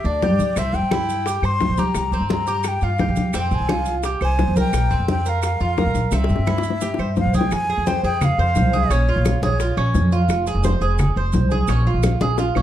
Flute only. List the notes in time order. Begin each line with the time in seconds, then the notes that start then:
0.06 D5
0.58 E5
0.76 G5
1.45 C6
1.79 A#5
2.31 A#5
2.68 G5
2.84 F5
3.36 G5
3.54 G#5
4.24 G#5
4.60 G5
5.10 G5
5.29 F5
5.44 F5
6.15 E5
7.19 F5
7.37 G5
7.53 G#5
7.87 G5
8.05 G5
8.24 F5
8.91 C#5
9.43 C#5